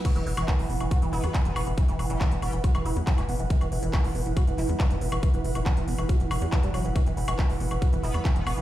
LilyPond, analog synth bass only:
\new Staff \with { instrumentName = "Analog synth bass" } { \clef bass \time 4/4 \key c \lydian \tempo 4 = 139 r16 e,,16 e,,16 e,,16 r16 e,,16 e,,16 e,,16 r16 e,,16 e,,16 e,16 r16 e,,16 e,,16 e,,16 | r16 e,,16 e,,16 e,,16 r16 e,,16 e,,16 e,,16 r16 e,,16 e,,16 e,16 r16 e,,16 e,,16 e,,16 | r16 e,,16 e,,16 e,,16 r16 e,,16 e,,16 e,,16 r16 e,,16 e,,16 e,16 r16 e,,16 e,,16 e,,16 | r16 e,,16 e,,16 e,,16 r16 e,,16 e,,16 e,,16 r16 e,,16 e,,16 e,16 r16 e,,16 e,,16 e,,16 |
r16 e,,16 e,,16 e,,16 r16 e,,16 e,,16 e,,16 r16 e,,16 e,,16 e,16 r16 e,,16 e,,16 e,,16 | }